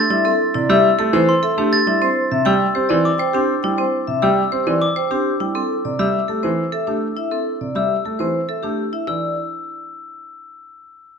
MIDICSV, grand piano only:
0, 0, Header, 1, 2, 480
1, 0, Start_track
1, 0, Tempo, 588235
1, 206, Time_signature, 3, 2, 24, 8
1, 9128, End_track
2, 0, Start_track
2, 0, Title_t, "Grand piano"
2, 0, Program_c, 0, 0
2, 83, Note_on_c, 0, 55, 71
2, 241, Note_off_c, 0, 55, 0
2, 448, Note_on_c, 0, 48, 70
2, 566, Note_on_c, 0, 55, 101
2, 603, Note_off_c, 0, 48, 0
2, 722, Note_off_c, 0, 55, 0
2, 809, Note_on_c, 0, 57, 81
2, 924, Note_on_c, 0, 52, 100
2, 963, Note_off_c, 0, 57, 0
2, 1081, Note_off_c, 0, 52, 0
2, 1286, Note_on_c, 0, 57, 77
2, 1442, Note_off_c, 0, 57, 0
2, 1525, Note_on_c, 0, 55, 65
2, 1681, Note_off_c, 0, 55, 0
2, 1888, Note_on_c, 0, 48, 71
2, 2008, Note_on_c, 0, 55, 96
2, 2043, Note_off_c, 0, 48, 0
2, 2162, Note_off_c, 0, 55, 0
2, 2248, Note_on_c, 0, 60, 71
2, 2370, Note_on_c, 0, 52, 98
2, 2403, Note_off_c, 0, 60, 0
2, 2523, Note_off_c, 0, 52, 0
2, 2730, Note_on_c, 0, 60, 80
2, 2883, Note_off_c, 0, 60, 0
2, 2971, Note_on_c, 0, 55, 68
2, 3123, Note_off_c, 0, 55, 0
2, 3328, Note_on_c, 0, 48, 57
2, 3450, Note_on_c, 0, 55, 90
2, 3482, Note_off_c, 0, 48, 0
2, 3603, Note_off_c, 0, 55, 0
2, 3690, Note_on_c, 0, 60, 66
2, 3809, Note_on_c, 0, 52, 84
2, 3843, Note_off_c, 0, 60, 0
2, 3963, Note_off_c, 0, 52, 0
2, 4169, Note_on_c, 0, 60, 65
2, 4323, Note_off_c, 0, 60, 0
2, 4410, Note_on_c, 0, 55, 54
2, 4563, Note_off_c, 0, 55, 0
2, 4772, Note_on_c, 0, 48, 57
2, 4889, Note_on_c, 0, 55, 86
2, 4924, Note_off_c, 0, 48, 0
2, 5043, Note_off_c, 0, 55, 0
2, 5135, Note_on_c, 0, 57, 55
2, 5258, Note_on_c, 0, 52, 81
2, 5285, Note_off_c, 0, 57, 0
2, 5406, Note_off_c, 0, 52, 0
2, 5612, Note_on_c, 0, 57, 58
2, 5764, Note_off_c, 0, 57, 0
2, 6208, Note_on_c, 0, 48, 47
2, 6327, Note_on_c, 0, 55, 70
2, 6363, Note_off_c, 0, 48, 0
2, 6482, Note_off_c, 0, 55, 0
2, 6571, Note_on_c, 0, 57, 51
2, 6690, Note_on_c, 0, 52, 72
2, 6723, Note_off_c, 0, 57, 0
2, 6843, Note_off_c, 0, 52, 0
2, 7050, Note_on_c, 0, 57, 57
2, 7203, Note_off_c, 0, 57, 0
2, 7405, Note_on_c, 0, 52, 55
2, 7628, Note_off_c, 0, 52, 0
2, 9128, End_track
0, 0, End_of_file